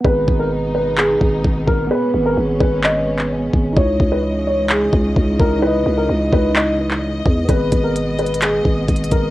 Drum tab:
HH |------------------------------------------------|------------------------------------------------|------------------------------------------------|------------------------------------------------|
CP |------------------------x-----------------------|------------------------x--------x--------------|------------------------x-----------------------|------------------------x--------x--------------|
BD |o-----o-----------------------o-----o-----o-----|------------------o-----------------------o-----|o-----o-----------------------o-----o-----o-----|------------------o-----------------------o-----|

HH |x-----x-----x-----x-x-x-x-----------x-x-x-x-----|
CP |------------------------x-----------------------|
BD |o-----o-----------------------o-----o-----o-----|